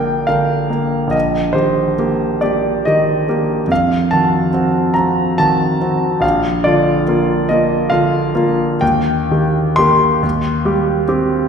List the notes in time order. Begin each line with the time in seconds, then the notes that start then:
Already playing: A#1 D3 A#3 A#4 D5 F5 G5
0.27 D3 A#4 F5
0.70 A#3 A#4
1.07 A#1 D#5
1.53 D#3 G4 C5
1.98 A#3 G4
2.41 A#3 G4 D5
2.85 D#3 G4 D#5
3.29 A#3 G4
3.67 F2
3.72 F5
4.11 D#3 F#4 A5
4.54 C4 F#4
4.94 C4 F#4 A#5
5.38 D#3 F#4 A5
5.81 C4 F#4
6.20 A#1 F5
6.64 D3 F4 D5
7.08 A#3 F4
7.49 A#3 F4 D#5
7.90 D3 F4 F5
8.35 A#3 F4
8.81 D#2 G5
9.31 D#3 G4
9.76 A#3 G4 C6
10.23 D#2
10.65 G3 G4
11.08 C4 G4